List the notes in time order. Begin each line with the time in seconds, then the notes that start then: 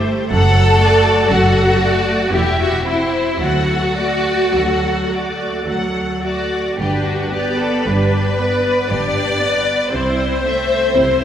Already playing: G1 G2 A3 G4 C5
0.30 F#1 F#2 F#3 A4 F#5
0.79 A3 F#4 D5
1.29 F#1 F#2 F#3 F#4 A4 F#5
1.79 A3 F#4 D5
2.31 E1 E2 E4 G4
2.36 E5
2.61 F#4
2.84 C4 E4
2.88 E4 C5
3.40 D2 F#3 F#4 A4 F#5
3.96 A3 F#4 D5
4.53 D2 F#3 A4 F#5
5.10 A3 F#4 D5
5.66 D2 F#3 A4 F#5
6.22 A3 F#4 D5
6.78 G1 G2 D4 G4 B4
7.04 F#4
7.32 B3 G4 B4 D5
7.58 A4
7.85 G1 G2 D4 G4 B4
7.90 B4
8.38 B3 B4 D5
8.89 G1 G2 D4 G4 D5
8.93 B4
9.41 B3 B4 D5
9.92 C2 C3 C4 E4 C5
10.45 A3 C4 E5
10.95 C2 C3 C4 E4 C5